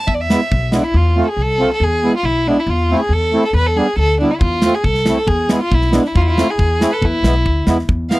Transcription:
0.07 E2 E5, kick
0.14 D5
0.20 E5
0.30 G#3 B3 E4, snare
0.51 B1, kick
0.71 G#3 B3 E4, snare
0.75 D4
0.83 E4
0.94 E2 F4
1.16 A3 C4 F4
1.25 G#4 A4
1.37 C2
1.42 A4
1.59 A3 C4 F4
1.73 A4
1.80 E2 G#4
2.03 G#3 B3 E4
2.16 F4
2.23 B1 E4
2.47 G#3 B3 D4 E4
2.59 E4
2.67 E2 F4
2.90 A3 C4 E4
3.00 G#4
3.09 E2 A4
3.33 A3 C4 E4
3.45 A4
3.53 E2 B4
3.66 A4
3.76 G3 B3 D4 G#4
3.96 D2 A4
4.20 G3 B3 D4 E4
4.31 E4
4.41 E2 F4, kick
4.62 A3 C4 F4, snare
4.75 G#4
4.84 C2 A4, kick
4.95 snare
5.06 A3 C4 E4, snare
5.17 A4
5.27 E2 G#4, kick
5.49 G#3 B3 E4, snare
5.62 F4
5.71 B1 E4, kick
5.82 snare
5.91 G#3 B3 D4 E4, snare
6.05 E4, snare
6.15 E2 F4, kick
6.20 E4
6.31 F4
6.37 A3 C4 E4, snare
6.51 G#4
6.58 E2, kick
6.80 A3 C4 E4, snare
6.90 A4 B4
7.02 E2 E4, kick
7.23 B1 G#3 B3 E4, snare
7.45 D2, kick
7.67 E2 G#3 B3 E4, snare
7.79 snare
7.89 E2, kick
8.10 G#3 B3 E4 F5, snare

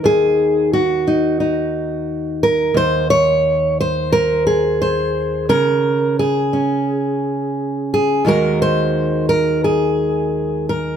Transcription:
Already playing: D#3 D#4
0.04 D#2 G#4
0.73 F#4
1.07 D#4
1.40 D#4
2.43 A#4
2.74 D#2 C5
3.10 C#5
3.81 C5
4.12 A#4
4.47 G#4
4.82 C5
5.49 C#3 A#4
6.19 G#4
6.53 C#4
7.94 G#4
8.25 D#2 D#3 G#3 F#4 A#4
8.62 C5
9.29 A#4
9.64 G#4
10.69 A#4

